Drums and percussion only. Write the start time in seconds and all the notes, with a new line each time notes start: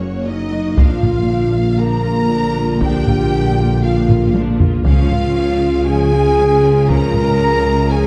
0.77 taiko
1.03 taiko low-mid
2.82 taiko
3.07 taiko low-mid
4.09 taiko low-mid
4.35 taiko high
4.60 taiko low
4.85 taiko
5.11 taiko low-mid
6.88 taiko
7.14 taiko low-mid